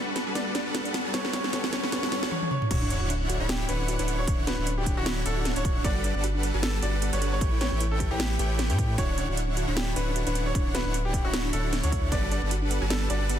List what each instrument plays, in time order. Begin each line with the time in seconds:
Already playing: sub bass G1, supersaw synth G3 D4 A4 B4 F#5, string section G3 F#4 A4 B4, riser
0.07 synth arpeggio sound D4
0.16 synth arpeggio sound B3, snare, closed hi-hat
0.27 sub bass G1, supersaw synth G3 D4 A4 B4 A5, synth arpeggio sound F#4
0.35 sub bass G1, supersaw synth G3 D4 A4 B4 F#5, synth arpeggio sound B3, grand piano D5, snare, closed hi-hat
0.46 synth arpeggio sound F#4
0.55 synth arpeggio sound D4, grand piano D5, snare, closed hi-hat
0.66 sub bass G1, supersaw synth G3 D4 A4 B4 F#5, synth arpeggio sound B3
0.75 synth arpeggio sound F#4, snare, closed hi-hat
0.85 synth arpeggio sound D4, closed hi-hat
0.94 synth arpeggio sound B3, snare, closed hi-hat
1.05 sub bass G2, supersaw synth G3 D4 A4 B4 A5, synth arpeggio sound F#4
1.14 sub bass A1, supersaw synth G3 C#4 A4 B4 F#5, string section A3 C#4 G4, synth arpeggio sound B3, grand piano C#5, snare, closed hi-hat
1.25 synth arpeggio sound F#4, snare
1.33 synth arpeggio sound C#4, grand piano C#5, snare, closed hi-hat
1.44 sub bass A1, supersaw synth G3 C#4 A4 B4 F#5, synth arpeggio sound B3, snare
1.53 sub bass A1, supersaw synth G3 C#4 A4 B4 F#5, synth arpeggio sound B3, grand piano C#5, snare, closed hi-hat
1.64 synth arpeggio sound F#4, snare
1.73 synth arpeggio sound C#4, grand piano C#5, snare, closed hi-hat
1.83 sub bass A1, supersaw synth G3 C#4 A4 B4 F#5, synth arpeggio sound B3, snare
1.92 sub bass A1, supersaw synth G3 C#4 A4 B4 F#5, synth arpeggio sound B3, grand piano C#5, snare, closed hi-hat
2.03 synth arpeggio sound F#4, snare
2.12 sub bass A1, supersaw synth G3 C#4 A4 B4 F#5, synth arpeggio sound B3, grand piano C#5, snare, closed hi-hat
2.23 synth arpeggio sound F#4, snare
2.31 grand piano C#5, high tom
2.42 high tom
2.51 grand piano C#5, mid tom
2.62 mid tom
2.71 sub bass D1, supersaw synth D3 D4 E4 C#5 F#5, synth arpeggio sound F#4, grand piano C#5, kick, closed hi-hat, crash, sub drop
2.82 synth arpeggio sound D4
2.90 synth arpeggio sound C#4, grand piano C#5, closed hi-hat
3.01 sub bass D1, supersaw synth D3 D4 E4 C#5 F#5, synth arpeggio sound F#4
3.10 synth arpeggio sound D4, closed hi-hat
3.21 synth arpeggio sound C#4
3.29 synth arpeggio sound F#4, closed hi-hat
3.40 sub bass D1, supersaw synth D3 D4 E4 C#5 B5, synth arpeggio sound D4
3.49 synth arpeggio sound C#4, grand piano G4, snare, closed hi-hat
3.60 synth arpeggio sound F#4
3.69 sub bass D1, supersaw synth D3 D4 E4 C#5 F#5, synth arpeggio sound D4, grand piano B4, closed hi-hat
3.80 synth arpeggio sound C#4
3.88 synth arpeggio sound F#4, closed hi-hat
3.99 sub bass D1, supersaw synth D3 D4 E4 C#5 F#5, synth arpeggio sound D4, grand piano B4, closed hi-hat
4.08 synth arpeggio sound C#4, closed hi-hat
4.19 synth arpeggio sound F#4, grand piano C#5
4.28 sub bass D1, supersaw synth D3 D4 E4 C#5 F#5, synth arpeggio sound D4, kick, closed hi-hat
4.38 synth arpeggio sound C#4
4.47 synth arpeggio sound F#4, grand piano B4, snare, closed hi-hat
4.58 sub bass D1, supersaw synth D3 D4 E4 C#5 F#5, synth arpeggio sound D4
4.67 synth arpeggio sound C#4, closed hi-hat
4.78 synth arpeggio sound F#4, grand piano G4
4.86 synth arpeggio sound D4, kick, closed hi-hat
4.97 sub bass D1, supersaw synth D3 D4 E4 C#5 B5, synth arpeggio sound C#4, grand piano F#4
5.06 synth arpeggio sound F#4, snare, closed hi-hat
5.17 synth arpeggio sound D4
5.26 sub bass D1, supersaw synth D3 D4 E4 C#5 F#5, synth arpeggio sound C#4, grand piano A4, closed hi-hat
5.37 synth arpeggio sound F#4
5.45 synth arpeggio sound D4, snare, closed hi-hat
5.56 sub bass D1, supersaw synth D3 D4 E4 C#5 F#5, synth arpeggio sound C#4, grand piano C#5, closed hi-hat
5.65 synth arpeggio sound F#4, kick, closed hi-hat
5.76 synth arpeggio sound D4
5.84 sub bass G1, supersaw synth G3 D4 A4 B4 F#5, synth arpeggio sound B3, grand piano D5, kick, closed hi-hat
5.95 synth arpeggio sound F#4
6.04 synth arpeggio sound D4, grand piano D5, closed hi-hat
6.15 sub bass G1, supersaw synth G3 D4 A4 B4 F#5, synth arpeggio sound B3
6.24 synth arpeggio sound F#4, closed hi-hat
6.35 synth arpeggio sound D4
6.43 synth arpeggio sound B3, closed hi-hat
6.54 sub bass G1, supersaw synth G3 D4 A4 B4 A5, synth arpeggio sound F#4
6.63 synth arpeggio sound D4, grand piano A4, snare, closed hi-hat
6.74 synth arpeggio sound B3
6.82 sub bass G1, supersaw synth G3 D4 A4 B4 F#5, synth arpeggio sound F#4, grand piano D5, closed hi-hat
6.93 synth arpeggio sound D4
7.02 synth arpeggio sound B3, closed hi-hat
7.13 sub bass G1, supersaw synth G3 D4 A4 B4 F#5, synth arpeggio sound F#4, grand piano C#5, closed hi-hat
7.22 synth arpeggio sound D4, closed hi-hat
7.33 synth arpeggio sound B3, grand piano C#5
7.41 sub bass A1, supersaw synth A3 E4 B4 C#5 G5, synth arpeggio sound G4, kick, closed hi-hat
7.52 synth arpeggio sound E4
7.61 synth arpeggio sound C#4, grand piano C#5, snare, closed hi-hat
7.72 sub bass A1, supersaw synth A3 E4 B4 C#5 G5, synth arpeggio sound G4
7.80 synth arpeggio sound E4, closed hi-hat
7.91 synth arpeggio sound C#4, grand piano A4
8.00 synth arpeggio sound G4, kick, closed hi-hat
8.11 sub bass A1, supersaw synth A3 E4 B4 C#5 B5, synth arpeggio sound E4, grand piano G4
8.20 synth arpeggio sound C#4, snare, closed hi-hat
8.31 synth arpeggio sound G4
8.39 sub bass A1, supersaw synth A3 E4 B4 C#5 G5, grand piano G4, synth arpeggio sound G4, closed hi-hat
8.50 synth arpeggio sound G4
8.59 synth arpeggio sound G4, snare, closed hi-hat
8.70 sub bass A2, supersaw synth A3 E4 B4 C#5 G5, synth arpeggio sound C#4, grand piano G4, closed hi-hat
8.78 synth arpeggio sound A4, kick, closed hi-hat
8.89 synth arpeggio sound A4
8.98 sub bass D1, supersaw synth D3 D4 E4 C#5 F#5, synth arpeggio sound F#4, grand piano C#5, kick, closed hi-hat
9.09 synth arpeggio sound D4
9.18 synth arpeggio sound C#4, grand piano C#5, closed hi-hat
9.28 sub bass D1, supersaw synth D3 D4 E4 C#5 F#5, synth arpeggio sound F#4
9.37 synth arpeggio sound D4, closed hi-hat
9.48 synth arpeggio sound C#4
9.57 synth arpeggio sound F#4, closed hi-hat
9.68 sub bass D1, supersaw synth D3 D4 E4 C#5 B5, synth arpeggio sound D4
9.77 synth arpeggio sound C#4, grand piano G4, snare, closed hi-hat
9.87 synth arpeggio sound F#4
9.96 sub bass D1, supersaw synth D3 D4 E4 C#5 F#5, synth arpeggio sound D4, grand piano B4, closed hi-hat
10.07 synth arpeggio sound C#4
10.16 synth arpeggio sound F#4, closed hi-hat
10.27 sub bass D1, supersaw synth D3 D4 E4 C#5 F#5, synth arpeggio sound D4, grand piano B4, closed hi-hat
10.35 synth arpeggio sound C#4, closed hi-hat
10.46 synth arpeggio sound F#4, grand piano C#5
10.55 sub bass D1, supersaw synth D3 D4 E4 C#5 F#5, synth arpeggio sound D4, kick, closed hi-hat
10.75 synth arpeggio sound F#4, grand piano B4, snare, closed hi-hat
10.85 sub bass D1, supersaw synth D3 D4 E4 C#5 F#5, synth arpeggio sound D4
10.94 synth arpeggio sound C#4, closed hi-hat
11.05 synth arpeggio sound F#4, grand piano G4
11.14 synth arpeggio sound D4, kick, closed hi-hat
11.25 sub bass D1, supersaw synth D3 D4 E4 C#5 B5, synth arpeggio sound C#4, grand piano F#4
11.33 synth arpeggio sound F#4, snare, closed hi-hat
11.44 synth arpeggio sound D4
11.53 sub bass D1, supersaw synth D3 D4 E4 C#5 F#5, synth arpeggio sound C#4, grand piano A4, closed hi-hat
11.64 synth arpeggio sound F#4
11.73 synth arpeggio sound D4, snare, closed hi-hat
11.83 sub bass D2, supersaw synth D3 D4 E4 C#5 F#5, synth arpeggio sound C#4, grand piano C#5, closed hi-hat
11.92 synth arpeggio sound F#4, kick, closed hi-hat
12.03 synth arpeggio sound D4
12.12 sub bass G1, supersaw synth G3 D4 A4 B4 F#5, synth arpeggio sound B3, grand piano D5, kick, closed hi-hat
12.23 synth arpeggio sound F#4
12.31 synth arpeggio sound D4, grand piano D5, closed hi-hat
12.42 sub bass G1, supersaw synth G3 D4 A4 B4 F#5, synth arpeggio sound B3
12.51 synth arpeggio sound F#4, closed hi-hat
12.62 synth arpeggio sound D4
12.71 synth arpeggio sound B3, closed hi-hat
12.82 sub bass G1, supersaw synth G3 D4 A4 B4 A5, synth arpeggio sound F#4
12.90 synth arpeggio sound D4, grand piano A4, snare, closed hi-hat
13.01 synth arpeggio sound B3
13.10 sub bass G1, supersaw synth G3 D4 A4 B4 F#5, synth arpeggio sound F#4, grand piano D5, closed hi-hat
13.21 synth arpeggio sound D4
13.30 synth arpeggio sound B3, closed hi-hat